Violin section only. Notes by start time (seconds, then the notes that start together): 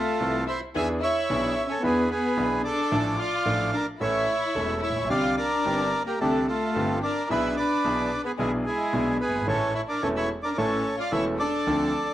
Already playing: A3
0.47 E4
0.75 G#4
1.01 E4
1.68 C#4
1.82 B3
2.10 B3
2.63 D4
3.18 F4
3.73 D4
4.00 E4
4.81 E4
5.11 F4
5.38 D4
6.06 A#3
6.20 A3
6.47 A3
7.01 D4
7.29 E4
7.56 D4
8.24 B3
8.38 G#3
8.66 G#3
9.21 B3
9.48 C#4
9.75 E4
9.88 D4
10.03 C#4
10.17 E4
10.44 D4
10.57 C#4
10.98 F4
11.12 E4
11.38 D4